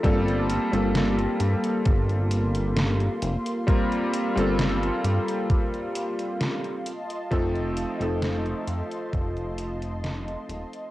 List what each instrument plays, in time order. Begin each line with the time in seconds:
0.03 analog synth bass G1, electric grand piano G3 A#3 C4 F4 A4, analog synth pad A#3 F4 A5 C6, kick, closed hi-hat
0.28 closed hi-hat
0.50 closed hi-hat
0.72 analog synth bass G1, electric grand piano G3 A#3 C4 F4 A4, closed hi-hat
0.95 snare, closed hi-hat
1.19 closed hi-hat
1.40 analog synth bass G2, closed hi-hat
1.64 closed hi-hat
1.86 analog synth bass G1, kick, closed hi-hat
2.10 closed hi-hat
2.31 closed hi-hat
2.55 closed hi-hat
2.77 snare, closed hi-hat
3.00 closed hi-hat
3.22 analog synth bass F1, closed hi-hat
3.46 closed hi-hat
3.67 electric grand piano G3 A#3 C4 F4 A#4, kick, closed hi-hat
3.92 closed hi-hat
4.14 closed hi-hat
4.36 analog synth bass G1, electric grand piano G3 A#3 C4 F4 A4, closed hi-hat
4.59 snare, closed hi-hat
4.83 closed hi-hat
5.04 analog synth bass G2, closed hi-hat
5.28 closed hi-hat
5.50 kick, closed hi-hat
5.74 closed hi-hat
5.95 closed hi-hat
6.19 closed hi-hat
6.41 snare, closed hi-hat
6.64 closed hi-hat
6.86 analog synth pad D#5 A5 C6, closed hi-hat
7.10 closed hi-hat
7.31 analog synth bass F1, electric grand piano F3 A3 C4 D#4 A4, kick, closed hi-hat
7.55 closed hi-hat
7.77 closed hi-hat
7.99 analog synth bass F1, electric grand piano F3 A3 C4 D#4 A4, closed hi-hat
8.22 snare, closed hi-hat
8.46 closed hi-hat
8.68 analog synth bass F2, closed hi-hat
8.92 closed hi-hat
9.13 analog synth bass F1, kick, closed hi-hat
9.37 closed hi-hat
9.58 closed hi-hat
9.82 closed hi-hat
10.04 snare, closed hi-hat
10.28 closed hi-hat
10.49 analog synth bass D#1, closed hi-hat
10.73 closed hi-hat